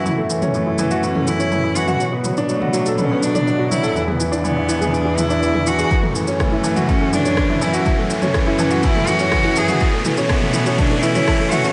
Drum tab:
SH |x-xxx-xxx-xxx-xx|x-xxx-xxx-xxx-xx|x-xxx-xxx-xxx-xx|x-xxx-xxx-xxx-xx|
SD |----------------|----------------|----------------|----r-------r---|
T2 |o--o--o--o--o--o|--o--o--o--o--o-|-o--o--o--o--o--|-o--o--o--o--o--|
BD |----------------|----------------|----------------|o---o---o---o---|

SH |x-xxx-xxx-xxx-xx|x-xxx-xxx-xxx-xx|
SD |----r-------r---|----r-------r---|
T2 |o--o--o--o--o--o|--o--o--o--o--o-|
BD |o---o---o---o---|o---o---o---o---|